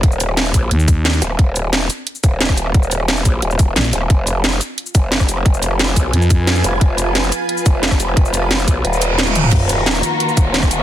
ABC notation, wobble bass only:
X:1
M:4/4
L:1/8
Q:1/4=177
K:Ebm
V:1 name="Wobble bass" clef=bass
E,,,3 B,,, z3 E,,, | z4 z E,,,3 | E,,,3 B,,, E,,,2 z E,,, | F,,,3 z2 F,,,3 |
F,,,3 C,, z3 F,,, | F,,,3 z2 F,,,3 | F,,,3 C,, E,,,4 | E,,,3 z2 E,,,3 |]